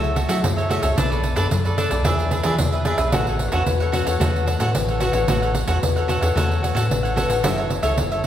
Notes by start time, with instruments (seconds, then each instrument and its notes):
Already playing: fingered electric bass C#2, nylon-string guitar F#3 A3 E4 G#4, cavaquinho F#4 A4 C#5 E5
0.04 pandeiro
0.16 cavaquinho F#4 A4 C#5 E5, pandeiro
0.28 fingered electric bass F#3, nylon-string guitar A3 E4 G#4, cavaquinho F#4 A4 C#5 E5, pandeiro
0.43 fingered electric bass F#2, nylon-string guitar C#3, pandeiro
0.56 cavaquinho A4 C#5 E5, pandeiro
0.69 nylon-string guitar A3 E4 G#4, cavaquinho F#4 A4 C#5 E5, pandeiro
0.82 fingered electric bass C#2, cavaquinho A4 C#5 E5, pandeiro
0.97 fingered electric bass B1, nylon-string guitar B3 D4 A4 C#5, cavaquinho D4 A4 B4 D5, pandeiro
1.10 cavaquinho A4 B4 D5, pandeiro
1.23 pandeiro
1.36 fingered electric bass F#2, cavaquinho D4 A4 B4 D5, nylon-string guitar D4 A4 C#5, pandeiro
1.51 fingered electric bass F#2, nylon-string guitar F#3, pandeiro
1.65 cavaquinho A4 B4 D5, pandeiro
1.77 cavaquinho D4 A4 B4 D5, nylon-string guitar D4 A4 C#5, pandeiro
1.90 fingered electric bass B1, cavaquinho A4 B4 D5, pandeiro
2.04 fingered electric bass E2, nylon-string guitar E3 F4 G#4 D5, cavaquinho D4 G#4 B4 E5, pandeiro
2.19 pandeiro
2.31 cavaquinho D4 G#4 B4 E5, pandeiro
2.43 fingered electric bass E3, cavaquinho D4 G#4 B4 E5, nylon-string guitar F4 G#4 D5, pandeiro
2.58 fingered electric bass E2, nylon-string guitar B2, pandeiro
2.72 cavaquinho G#4 B4 E5, pandeiro
2.85 cavaquinho D4 G#4 B4 E5, nylon-string guitar F4 G#4 D5, pandeiro
2.98 fingered electric bass B1, cavaquinho G#4 B4 E5, pandeiro
3.12 fingered electric bass A1, nylon-string guitar A3 C#4 F#4 B4, cavaquinho F#4 A4 C#5 F#5, pandeiro
3.27 cavaquinho A4 C#5 F#5, pandeiro
3.39 pandeiro
3.51 fingered electric bass E2, nylon-string guitar C#4 F#4 B4, cavaquinho F#4 A4 C#5 F#5, pandeiro
3.66 fingered electric bass E2, nylon-string guitar E3, pandeiro
3.80 cavaquinho A4 C#5 F#5, pandeiro
3.92 nylon-string guitar C#4 F#4 B4, cavaquinho F#4 A4 C#5 F#5, pandeiro
4.06 fingered electric bass E2, cavaquinho A4 C#5 F#5, pandeiro
4.19 fingered electric bass E2, nylon-string guitar A3 C#4 F#4 B4, cavaquinho F#4 A4 C#5 F#5, pandeiro
4.36 pandeiro
4.46 cavaquinho F#4 A4 C#5 F#5, pandeiro
4.58 fingered electric bass A2, nylon-string guitar C#4 F#4 B4, cavaquinho F#4 A4 C#5 F#5, pandeiro
4.74 fingered electric bass A1, nylon-string guitar E3, pandeiro
4.88 cavaquinho A4 C#5 F#5, pandeiro
5.00 nylon-string guitar C#4 F#4 B4, cavaquinho F#4 A4 C#5 F#5, pandeiro
5.13 fingered electric bass A1, cavaquinho A4 C#5 F#5, pandeiro
5.27 fingered electric bass A1, nylon-string guitar A3 C#4 F#4 B4, cavaquinho F#4 A4 C#5 F#5, pandeiro
5.42 cavaquinho A4 C#5 F#5, pandeiro
5.55 pandeiro
5.66 fingered electric bass E2, nylon-string guitar C#4 F#4 B4, cavaquinho F#4 A4 C#5 F#5, pandeiro
5.81 fingered electric bass E2, nylon-string guitar E3, pandeiro
5.96 cavaquinho A4 C#5 F#5, pandeiro
6.08 nylon-string guitar C#4 F#4 B4, cavaquinho F#4 A4 C#5 F#5, pandeiro
6.21 fingered electric bass E2, cavaquinho A4 C#5 F#5, pandeiro
6.35 fingered electric bass E2, nylon-string guitar A3 C#4 F#4 B4, cavaquinho F#4 A4 C#5 F#5, pandeiro
6.51 pandeiro
6.63 cavaquinho F#4 A4 C#5 F#5, pandeiro
6.75 fingered electric bass A2, nylon-string guitar C#4 F#4 B4, cavaquinho F#4 A4 C#5 F#5, pandeiro
6.89 fingered electric bass A1, nylon-string guitar E3, pandeiro
7.03 cavaquinho A4 C#5 F#5, pandeiro
7.15 nylon-string guitar C#4 F#4 B4, cavaquinho F#4 A4 C#5 F#5, pandeiro
7.28 fingered electric bass A1, cavaquinho A4 C#5 F#5, pandeiro
7.43 fingered electric bass F#1, nylon-string guitar F#3 C#4 E4 A4, cavaquinho F#4 A4 C#5 E5, pandeiro
7.57 cavaquinho A4 C#5 E5, pandeiro
7.70 muted cavaquinho stroke, pandeiro
7.82 fingered electric bass C#2, nylon-string guitar C#4 E4 A4, cavaquinho A4 C#5 E5, pandeiro
7.97 fingered electric bass F#1, nylon-string guitar C#3, muted cavaquinho stroke, pandeiro
8.12 cavaquinho A4 C#5 E5, pandeiro
8.24 nylon-string guitar C#4, cavaquinho F#4, pandeiro